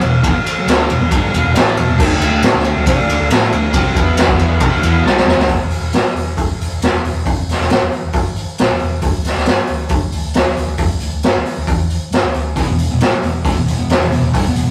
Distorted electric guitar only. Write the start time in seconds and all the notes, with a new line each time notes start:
0.01 E2 B2
0.22 E2 B2
0.34 muted distorted electric guitar stroke
0.57 muted distorted electric guitar stroke
0.66 D3 A3 D4
0.89 E2 B2
1.00 E2 B2
1.12 G2 D3 G3
1.33 E2 B2
1.44 E2 B2
1.55 A2 E3 A3
1.77 E2 B2
1.88 E2 B2
1.98 D3 A3
2.09 D3 A3
2.20 D3 A3
2.31 D3 A3
2.42 A3 E4
2.55 D3 A3
2.77 D3 A3
2.87 C4 G4
3.00 D3 A3
3.08 D3 A3
3.19 D3 A3
3.30 A3 E4 A4
3.52 D3 A3
3.74 C3 G3 C4
3.96 E3 B3 E4
4.29 D3 A3
4.39 E3 B3 E4
4.61 C4 G4
4.73 D3 A3
4.83 E3 B3 E4
5.05 C3 G3 C4
5.27 E3 B3
5.38 D3 A3
12.55 E2 B2
12.68 E2 B2
12.90 E2 B2
13.01 A2 E3
13.13 muted distorted electric guitar stroke
13.23 E2 B2
13.45 D3 A3
13.56 E2 B2
13.66 E2 B2
13.78 E2 B2
13.90 E2 B2
14.01 E2 B2
14.11 E2 B2
14.24 E2 B2
14.34 G2 D3
14.47 E2 B2
14.56 E2 B2